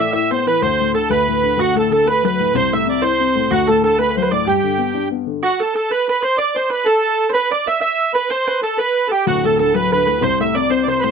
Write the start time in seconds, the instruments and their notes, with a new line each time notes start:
Already playing: upright piano A2 A3
0.00 mandolin E5, accordion E5
0.13 upright piano E4, mandolin E5, accordion E5
0.31 upright piano B3, mandolin C5, accordion C5
0.46 upright piano E3, mandolin B4, accordion B4
0.62 upright piano D2, accordion C5, mandolin C5
0.79 upright piano A2
0.95 upright piano D3, accordion A4, mandolin A4
1.10 upright piano D2, mandolin B4, accordion B4
1.28 upright piano A2
1.43 upright piano D3
1.57 upright piano D2, mandolin F#4, accordion F#4
1.75 upright piano A2, mandolin A4
1.79 accordion A4
1.91 upright piano D3, mandolin A4, accordion A4
2.06 upright piano A3, mandolin B4, accordion B4
2.23 upright piano F#3, mandolin B4, accordion B4
2.39 upright piano A2
2.54 upright piano C2, mandolin C5, accordion C5
2.72 upright piano A2, mandolin E5, accordion E5
2.87 upright piano C3, accordion D5
3.02 upright piano E4, mandolin C5, accordion C5
3.20 upright piano C4
3.35 upright piano A2
3.51 upright piano D2, mandolin F#4, accordion F#4
3.67 upright piano A2, mandolin A4, accordion A4
3.83 upright piano D3, mandolin A4, accordion A4
3.99 upright piano A3, mandolin B4, accordion B4
4.11 mandolin B4
4.17 upright piano F#3, accordion C5
4.22 mandolin B4
4.31 upright piano A2, mandolin D5, accordion D5
4.46 upright piano G2, mandolin G4, accordion G4
4.64 upright piano D3
4.78 upright piano B3
4.94 upright piano D4
5.11 upright piano B3
5.27 upright piano D3
5.43 mandolin F#4, accordion F#4
5.60 mandolin A4, accordion A4
5.75 mandolin A4, accordion A4
5.91 mandolin B4, accordion B4
6.09 accordion B4, mandolin B4
6.22 mandolin C5, accordion C5
6.38 accordion D5, mandolin D5
6.55 accordion C5, mandolin C5
6.70 mandolin B4, accordion B4
6.85 accordion A4, mandolin A4
7.29 accordion B4, mandolin C5
7.34 mandolin B4
7.51 accordion D5, mandolin D5
7.67 accordion E5, mandolin E5
7.81 accordion E5, mandolin E5
8.14 accordion B4, mandolin B4
8.30 accordion C5, mandolin C5
8.47 mandolin B4
8.63 accordion A4, mandolin A4
8.78 accordion B4, mandolin B4
9.08 mandolin G4, accordion G4 A4
9.27 upright piano D1 D2, mandolin F#4, accordion F#4
9.44 upright piano A2, accordion A4, mandolin A4
9.59 upright piano D3, mandolin A4, accordion A4
9.74 upright piano F#3, mandolin B4, accordion B4
9.91 upright piano D3, mandolin B4, accordion B4
10.07 upright piano A2, mandolin B4
10.21 upright piano C2, mandolin C5, accordion C5
10.40 upright piano A2, mandolin E5, accordion E5
10.55 upright piano C3, mandolin D5, accordion D5
10.70 upright piano C4, mandolin C5, accordion C5
10.83 accordion D5
10.88 upright piano C3, mandolin C5, accordion C5
10.99 upright piano A2, accordion B4 C5, mandolin C5